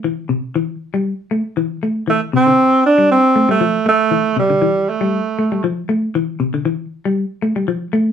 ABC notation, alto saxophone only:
X:1
M:4/4
L:1/16
Q:"Swing 16ths" 1/4=118
K:Dm
V:1 name="Alto saxophone"
z16 | A,2 C4 D2 C3 A,3 A,2- | A,2 G,4 A,6 z4 | z16 |]